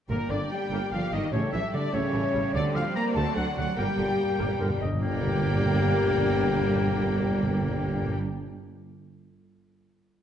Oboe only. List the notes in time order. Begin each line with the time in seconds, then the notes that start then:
0.10 A#4
0.31 D5
0.51 G5
0.92 F5
1.13 D#5
1.34 C#5
1.53 E5
1.74 D5
1.94 C#5
2.54 D5
2.76 F5
2.96 A#5
3.17 A5
3.37 F#5
3.58 F#5
3.79 G5
5.01 A#3